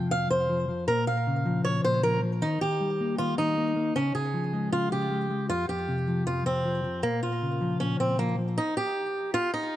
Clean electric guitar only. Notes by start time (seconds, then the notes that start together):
Already playing: C3 F3
0.11 F2
0.30 F2
0.49 F3
0.68 F3
0.88 A#2
1.07 A#2
1.27 C#3
1.46 F3
1.65 A#2
1.84 A#2
2.04 F3
2.23 F3
2.42 D#3
2.61 D#3
2.81 G3
3.00 A#3
3.19 D#3
3.38 D#3
3.57 A#3
3.76 A#3
3.96 C#3
4.15 C#3
4.34 F3
4.53 G#3
4.73 C#3
4.92 C#3
5.11 G#3
5.30 G#3
5.49 F2
5.69 F2
5.88 C3
6.08 F3
6.26 F2
6.46 F2
6.65 F3
6.84 F3
7.03 A#2
7.22 A#2
7.42 C#3
7.61 F3
7.80 A#2
7.99 A#2
8.19 F3
8.38 F3